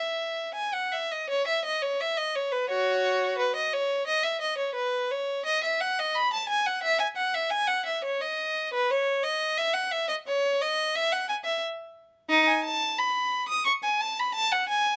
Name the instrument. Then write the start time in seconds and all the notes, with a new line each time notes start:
violin
Already playing: E5
0.54 G#5
0.73 F#5
0.92 E5
1.11 D#5
1.29 C#5
1.47 E5
1.65 D#5
1.82 C#5
2.01 E5
2.17 D#5
2.35 C#5
2.52 B4
2.69 F#4 C#5
3.38 B4
3.55 D#5
3.73 C#5
4.07 D#5
4.23 E5
4.41 D#5
4.58 C#5
4.75 B4
5.11 C#5
5.45 D#5
5.63 E5
5.80 F#5
5.99 D#5
6.15 B5
6.33 A5
6.48 G#5
6.66 F#5
6.83 E5
6.99 G#5
7.16 F#5
7.34 E5
7.50 G#5
7.67 F#5
7.85 E5
8.04 C#5
8.21 D#5
8.73 B4
8.90 C#5
9.23 D#5
9.57 E5
9.73 F#5
9.91 E5
10.08 D#5
10.27 C#5
10.61 D#5
10.95 E5
11.12 F#5
11.29 G#5
11.45 E5
12.29 D#4
12.46 G#5
12.64 A5
12.99 B5
13.48 D#6
13.65 C#6
13.84 G#5
14.00 A5
14.19 B5
14.34 A5
14.52 F#5
14.68 G#5